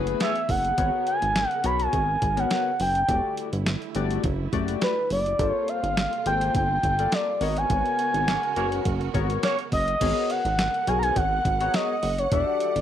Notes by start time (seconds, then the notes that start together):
Already playing: F#1 E3 A3 B3 E4 F#4 G#4 B4
0.07 closed hi-hat
0.20 A3 C#4 G#4 C#5 E5, snare, closed hi-hat
0.36 closed hi-hat
0.49 F#1 F#5, kick, open hi-hat
0.65 closed hi-hat
0.77 G#1 C#3 B3 F#4 A#4 C#5, kick, closed hi-hat
1.07 G#5, closed hi-hat
1.22 G#1, closed hi-hat
1.36 snare, closed hi-hat
1.49 F#5, closed hi-hat
1.64 B1 B3 F#4 A#4 C#5 B5, closed hi-hat
1.80 G#5, closed hi-hat
1.93 G#1, kick, closed hi-hat
2.22 G#1, kick, closed hi-hat
2.36 B3 F#4 A#4 C#5 F#5, closed hi-hat
2.51 snare, closed hi-hat
2.80 F#1 G5, open hi-hat
2.95 closed hi-hat
3.08 E1 D3 G3 A3 E4 F#4 G4 D5, kick, closed hi-hat
3.37 closed hi-hat
3.53 G1, closed hi-hat
3.66 snare, closed hi-hat
3.82 closed hi-hat
3.95 G1 A3 F#4 G4 D5, closed hi-hat
4.11 closed hi-hat
4.24 F#1, kick, closed hi-hat
4.53 F#1 A3 F#4 G4 D5, kick, closed hi-hat
4.68 closed hi-hat
4.82 B4, snare, closed hi-hat
5.10 F#1 D5, open hi-hat
5.26 closed hi-hat
5.39 G1 C3 A#3 F4 A4 C5, kick, closed hi-hat
5.50 C#5
5.68 F5, closed hi-hat
5.83 G1, closed hi-hat
5.97 snare, closed hi-hat
6.13 closed hi-hat
6.26 G#1 A#3 F4 A4 C5 G5, closed hi-hat
6.41 closed hi-hat
6.55 G1 G5, kick, closed hi-hat
6.83 G1, kick, closed hi-hat
6.99 A#3 F4 A4 D5, closed hi-hat
7.12 D5, snare, closed hi-hat
7.40 G#1 C#3 G#3 B3 F#4 A#4 C#5 D#5, open hi-hat
7.57 G#5, closed hi-hat
7.70 G#1, kick, closed hi-hat
7.86 closed hi-hat
7.99 closed hi-hat
8.14 G#1, closed hi-hat
8.28 A#3 C#4 F#4 C#5, snare, closed hi-hat
8.43 closed hi-hat
8.56 F#1 A#3 B3 C#4 F#4 A#4 C#5, closed hi-hat
8.72 closed hi-hat
8.85 F#1, kick, closed hi-hat
9.01 closed hi-hat
9.14 G#1 B3 F#4 A#4 C#5, kick, closed hi-hat
9.30 closed hi-hat
9.43 A#3 C#4 F#4 C#5, snare, closed hi-hat
9.59 closed hi-hat
9.72 F#1 D#5, kick, open hi-hat
9.88 closed hi-hat
10.00 G#1 C#3 G#3 B3 F#4 G#4 A#4 C#5 F#5, kick, closed hi-hat, crash
10.30 F#5, closed hi-hat
10.45 G#1, closed hi-hat
10.59 snare, closed hi-hat
10.74 closed hi-hat
10.87 B1 B3 F#4 G#4 A#4 C#5 G#5, closed hi-hat
10.99 G#5 A#5, closed hi-hat
11.16 G#1 F#5, kick, closed hi-hat
11.45 G#1, kick, closed hi-hat
11.60 B3 F#4 G#4 A#4 C#5 F#5, closed hi-hat
11.74 D#5, snare, closed hi-hat
12.03 F#1, open hi-hat
12.18 C#5, closed hi-hat
12.32 E1 E3 G3 D4 F#4 G4 A4 D5 E5, kick, closed hi-hat
12.60 closed hi-hat
12.76 G1, closed hi-hat